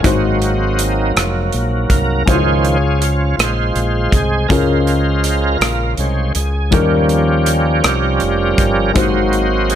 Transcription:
0.02 G#1 G#2 F#3 G#3 A#3 C4 D#4 F#4 C5, kick, closed hi-hat
0.42 closed hi-hat
0.79 closed hi-hat
1.16 F1, cross-stick, closed hi-hat
1.52 A#1, closed hi-hat
1.90 C2 A#4, kick, closed hi-hat
2.26 C#2 C#3 D#3 F3 G#3 C#4 E4 F4 G#4 C5, kick, closed hi-hat
2.34 F4
2.65 closed hi-hat
3.01 F4, closed hi-hat
3.37 A#1 G#3 F4 C5, cross-stick, closed hi-hat
3.75 A#1, closed hi-hat
4.11 C2 G#4, kick, closed hi-hat
4.48 C#2 C#3 G#3 C#4 F4 A#4 C5, kick, closed hi-hat
4.87 closed hi-hat
5.24 closed hi-hat
5.60 A#1, cross-stick, closed hi-hat
5.97 C2 G#3 C#4 C5, closed hi-hat
6.35 C#2 G#4, closed hi-hat
6.71 D#2 D#3 F3 G3 A#3 C#4 D#4 G4 A#4, kick, closed hi-hat
7.09 closed hi-hat
7.46 closed hi-hat
7.84 C2 C#4 G4 A#4, cross-stick, closed hi-hat
8.20 F1, closed hi-hat
8.58 G1, kick, closed hi-hat
8.93 G#1 G#2 F#3 G#3 A#3 D#4 F#4 C5, kick, closed hi-hat
8.98 C4 C5
9.33 closed hi-hat
9.70 G#4, closed hi-hat

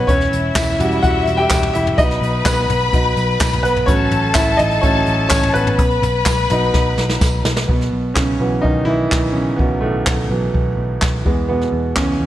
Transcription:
Already playing: B3 B4 C#5 D#5
0.07 E1 C#4 E4 C#5 E5, kick, closed hi-hat
0.21 snare
0.32 E1, closed hi-hat
0.55 E1 E4 E5, kick, snare, clap, closed hi-hat, tambourine
0.79 E1 G3 C#4 F#4, closed hi-hat, floor tom
0.92 closed hi-hat
1.03 E1 F#4 F#5, kick, closed hi-hat
1.26 E1, closed hi-hat
1.37 G4 G5
1.50 E1, kick, snare, clap, closed hi-hat, tambourine
1.63 floor tom
1.73 E1 E4 E5, closed hi-hat
1.87 floor tom
1.98 B1 F#3 B3 D#4 B4 D#5 B5, kick, closed hi-hat
2.11 snare, closed hi-hat
2.21 B1, closed hi-hat
2.45 B1 B3 B4, kick, snare, clap, closed hi-hat, tambourine
2.69 B1, closed hi-hat, floor tom
2.93 B1 F#3 B3 D#4, kick, closed hi-hat
3.17 B1, closed hi-hat
3.40 B1, kick, snare, clap, closed hi-hat, tambourine
3.53 floor tom
3.63 B1 B3 B4, closed hi-hat
3.76 floor tom
3.86 A1 F#3 A3 C#4 A4 C#5 A5, kick, closed hi-hat
4.11 A1, closed hi-hat, floor tom
4.34 A1 E4 E5, kick, snare, clap, closed hi-hat, tambourine
4.57 A1 D#4 D#5, closed hi-hat, floor tom
4.71 closed hi-hat
4.81 A1 F#3 A3 C#4 C#5, kick, closed hi-hat
5.06 A1, closed hi-hat
5.29 A1 C#4 C#5, kick, snare, clap, closed hi-hat, tambourine
5.43 floor tom
5.54 A1 B3 B4, closed hi-hat
5.67 floor tom
5.78 B1 B4 B5, kick, closed hi-hat
5.91 closed hi-hat
6.02 B1, closed hi-hat, floor tom
6.25 B1, kick, snare, clap, closed hi-hat, tambourine
6.50 B1 F#3 B3 D#4, closed hi-hat, floor tom
6.74 B1, kick, snare
6.97 B1, snare
7.09 snare
7.21 B1, kick, snare, tambourine
7.45 B1, snare
7.57 snare
7.67 B1 B2 B3, kick
7.81 snare
7.92 B1
8.14 B1 C#3 C#4, kick, snare, clap
8.39 B1 E3 F#3 B3
8.61 B1 D#3 D#4, kick
8.85 B1 E3 E4
9.11 B1, kick, snare, clap
9.32 B1 C#3 C#4
9.56 B1 B2 E3 F#3 B3, kick
9.81 B1 A2 A3
10.06 B1, kick, snare, clap
10.30 B1 E3 F#3 B3
10.54 B1, kick
10.77 B1
11.02 B1, kick, snare, clap
11.25 E2 E3 G#3 B3, kick
11.49 B2 B3
11.61 snare
11.73 E2
11.96 E2 C#3 C#4, kick, snare, clap
12.20 E2

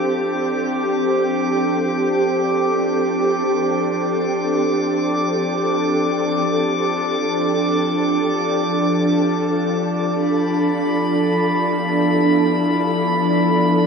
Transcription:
Already playing: F3 C4 D4 G4 A4 D6
10.10 B5
10.55 B3
10.87 E4

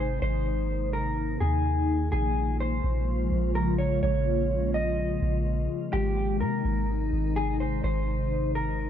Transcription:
Already playing: G#1 C3 D#3 G#3 D#4
0.00 C5
0.22 G#1 A#3 C5
0.93 A#4
1.40 D#2 G#4
2.12 A#1 C#3 F3 G#3 F4 G#4
2.60 C5
2.84 A#1
3.32 A#1
3.55 A#4
3.78 C#5
4.03 A#1 C#5
4.74 D#5
5.22 A#1
5.93 G#1 C3 D#3 D#4 G4
6.41 C3 A#4
6.65 G#1
7.12 G#1
7.36 G#4
7.60 C5
7.84 G#1 C5
8.55 A#4

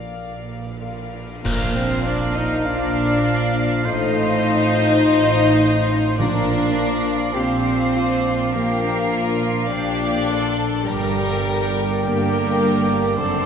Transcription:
Already playing: A#2 F3 A#3 D4 F4 A#4 D5 F5
0.14 A#1 A#2 F5
0.48 A#4
0.80 F4 A#4 D5 F5
1.13 D4
1.43 A#1 A#2 F3 A#3 F4 A#4 F5, concert bass drum, crash
1.75 C4 D4 C5
2.05 D4 A#4 D5
2.34 D#4 D5 D#5
2.64 A#1 A#2 D4 D5 F5
2.94 A#4
3.23 F4
3.54 D4
3.84 A1 A2 D#4 C5 D#5
4.14 C4
4.44 C5
5.02 A1 A2 F5
5.32 C5
5.61 F4
5.90 C4
6.18 A#1 A#2 F3 D4 F4 A#4 D5 F5
6.47 D4
6.77 A#4
7.07 D5
7.35 A#1 A#2 C4 G4 C5 F5
7.66 A#4
7.96 F4
8.25 D4
8.53 A#1 A#2 F3 A#3 G4 A#4
8.84 D4
9.11 F4 A#4
9.42 D5
9.69 A#1 A#2 D4 G4 D5 F5
9.99 A#4
10.27 F4 A4
10.58 D4
10.85 G1 G2 D3 G3 G4 A#4 D5 G5
11.14 D4
11.44 A#4
11.74 D5
12.03 G1 G2 A#3 G4 A#4 G5
12.32 A#4
12.60 G4
12.89 D4
13.17 F#1 F#2 C4 A4 C5 A5

